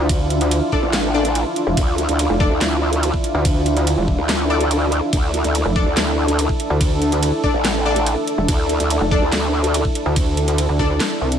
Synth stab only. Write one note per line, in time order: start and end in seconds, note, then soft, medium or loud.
0.72 0.81 D4 medium
0.72 0.81 A4 medium
0.72 0.81 D5 medium
1.14 1.28 D4 loud
1.14 1.28 A4 medium
1.14 1.28 D5 loud
2.40 2.49 D4 medium
2.40 2.49 A4 medium
2.40 2.49 D5 loud
4.50 4.63 D4 loud
4.50 4.63 A4 medium
4.50 4.63 D5 loud
5.76 5.84 D4 medium
5.76 5.84 A4 medium
5.76 5.84 D5 loud
7.44 7.52 D4 medium
7.44 7.52 A4 medium
7.44 7.52 D5 medium
7.86 7.99 D4 loud
7.86 7.99 A4 medium
7.86 7.99 D5 loud
9.11 9.20 D4 medium
9.11 9.20 A4 medium
9.11 9.20 D5 loud
10.79 10.88 D4 medium
10.79 10.88 A4 medium
10.79 10.88 D5 medium